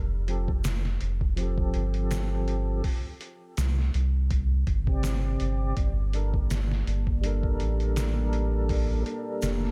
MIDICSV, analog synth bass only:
0, 0, Header, 1, 2, 480
1, 0, Start_track
1, 0, Key_signature, -2, "minor"
1, 0, Tempo, 731707
1, 1867, Time_signature, 4, 2, 24, 8
1, 6372, End_track
2, 0, Start_track
2, 0, Title_t, "Analog synth bass"
2, 0, Program_c, 0, 38
2, 0, Note_on_c, 0, 29, 97
2, 645, Note_off_c, 0, 29, 0
2, 671, Note_on_c, 0, 29, 92
2, 1128, Note_off_c, 0, 29, 0
2, 1153, Note_on_c, 0, 31, 81
2, 1849, Note_off_c, 0, 31, 0
2, 2348, Note_on_c, 0, 36, 87
2, 2562, Note_off_c, 0, 36, 0
2, 2590, Note_on_c, 0, 36, 92
2, 3048, Note_off_c, 0, 36, 0
2, 3064, Note_on_c, 0, 31, 79
2, 3525, Note_off_c, 0, 31, 0
2, 3551, Note_on_c, 0, 31, 86
2, 3763, Note_off_c, 0, 31, 0
2, 3785, Note_on_c, 0, 31, 96
2, 4485, Note_off_c, 0, 31, 0
2, 4510, Note_on_c, 0, 31, 98
2, 4968, Note_off_c, 0, 31, 0
2, 4991, Note_on_c, 0, 33, 73
2, 5928, Note_off_c, 0, 33, 0
2, 6185, Note_on_c, 0, 29, 84
2, 6372, Note_off_c, 0, 29, 0
2, 6372, End_track
0, 0, End_of_file